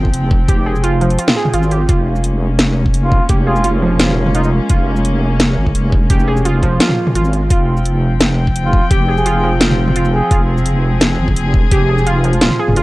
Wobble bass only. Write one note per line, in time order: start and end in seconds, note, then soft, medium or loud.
0.00 0.12 G1 loud
0.14 0.48 F1 medium
0.48 1.18 F1 loud
1.54 1.88 G#1 loud
1.89 3.20 F1 loud
3.29 4.60 F1 loud
4.70 5.56 F1 loud
5.57 5.74 G1 loud
5.75 6.09 F1 medium
6.10 6.79 F1 loud
7.15 7.49 G#1 loud
7.50 8.81 F1 medium
8.91 10.21 F1 loud
10.31 11.18 F1 loud
11.19 11.35 G1 loud
11.36 11.70 F1 medium
11.71 12.43 F1 loud
12.42 12.50 D#1 medium
12.68 12.83 F1 loud